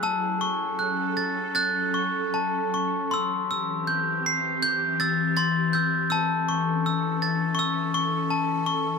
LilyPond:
<<
  \new Staff \with { instrumentName = "Glockenspiel" } { \time 4/4 \key a \major \tempo 4 = 80 << { e'''2 a'''4. r8 | e'''2 g'''8 a'''8 a'''8 g'''8 | e'''2 cis'''4. r8 | } \\ { a''8 cis'''8 fis'''8 a'''8 fis'''8 cis'''8 a''8 cis'''8 | c'''8 e'''8 g'''8 c''''4 e'''8 c'''8 e'''8 | a''8 cis'''8 e'''8 a'''8 e'''8 cis'''8 a''8 cis'''8 | } >> }
  \new Staff \with { instrumentName = "Ambient pad" } { \time 4/4 \key a \major << { <cis' a'>1 | <c' g'>1 | <cis' a'>1 | } \\ { fis1 | e1~ | e1 | } >> }
>>